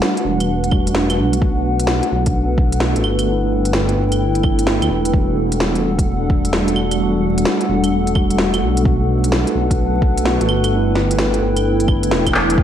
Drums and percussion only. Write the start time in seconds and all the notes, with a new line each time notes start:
0.02 snare
0.17 closed hi-hat
0.40 closed hi-hat, claves
0.64 closed hi-hat
0.71 kick, claves
0.87 closed hi-hat
0.95 snare
1.10 closed hi-hat, claves
1.33 closed hi-hat
1.42 kick
1.80 closed hi-hat
1.87 snare
2.03 closed hi-hat
2.26 kick, closed hi-hat
2.58 kick
2.72 closed hi-hat
2.80 snare
2.96 closed hi-hat
3.04 claves
3.19 closed hi-hat, claves
3.65 closed hi-hat
3.73 snare
3.89 closed hi-hat
4.12 closed hi-hat, claves
4.35 closed hi-hat
4.43 kick, claves
4.59 closed hi-hat
4.67 snare
4.82 closed hi-hat, claves
5.05 closed hi-hat
5.14 kick
5.52 closed hi-hat
5.60 snare
5.75 closed hi-hat
5.99 kick, closed hi-hat
6.30 kick
6.45 closed hi-hat
6.53 snare
6.68 closed hi-hat
6.76 claves
6.91 closed hi-hat, claves
7.38 closed hi-hat
7.45 snare
7.61 closed hi-hat
7.84 closed hi-hat, claves
8.07 closed hi-hat
8.15 kick, claves
8.30 closed hi-hat
8.38 snare
8.54 closed hi-hat, claves
8.77 closed hi-hat
8.85 kick
9.24 closed hi-hat
9.32 snare
9.47 closed hi-hat
9.71 kick, closed hi-hat
10.02 kick
10.18 closed hi-hat
10.25 snare
10.41 closed hi-hat
10.49 claves
10.64 closed hi-hat, claves
10.95 snare
11.11 closed hi-hat
11.19 snare
11.34 closed hi-hat
11.56 closed hi-hat, claves
11.80 closed hi-hat
11.88 kick, claves
12.03 closed hi-hat
12.11 snare
12.27 kick, closed hi-hat, claves
12.34 clap
12.50 closed hi-hat
12.58 kick